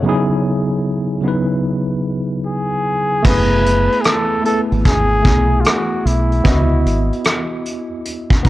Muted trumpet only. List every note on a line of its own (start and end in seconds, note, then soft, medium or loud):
2.46 3.28 G#4 medium
3.26 4.03 B4 loud
4.01 4.08 G#4 medium
4.06 4.45 A4 loud
4.46 4.62 A4 medium
4.86 5.62 G#4 loud
5.61 5.68 F4 medium
5.66 6.08 F#4 medium
6.06 7.25 E4 medium